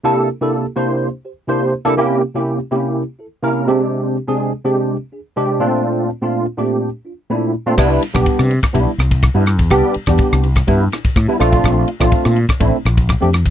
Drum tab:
CC |----------------|----------------|----------------|----------------|
RD |----------------|----------------|----------------|----------------|
SD |----------------|----------------|----------------|----------------|
BD |----------------|----------------|----------------|----------------|

CC |x---------------|----------------|----------------|
RD |--xxx-xxx-xxx-xx|x-xxx-xxx-xxx-xx|x-xxx-xxx-xxx-xx|
SD |r--r-r-r--r-r-r-|r--r-r-r--r-r-r-|r--r-r-r--r-r-r-|
BD |o--oo--oo--oo--o|o--oo--oo--oo--o|o--oo--oo--oo--o|